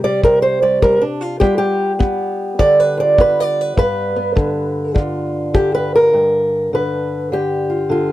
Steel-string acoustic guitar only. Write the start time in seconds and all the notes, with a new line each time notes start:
Already playing: C3
0.04 G3 D5
0.24 C3 A#4
0.42 C5
0.62 G3 D5
0.82 G3 A#4
1.01 D4
1.21 F4
1.40 G3 B3 F4 G4
1.58 G4
1.99 B3 G4
2.59 D3 D5
2.80 B4
2.97 F4 D5
3.18 B3 B4
3.40 D5
3.61 B4
3.77 G2 B4
4.16 B3
4.35 D3
4.94 D3 F4
5.54 D3 G4
5.75 B4
5.95 A#4
6.13 G2
6.73 D3 B4
7.32 D3 G4
7.70 F4
7.89 D3 F4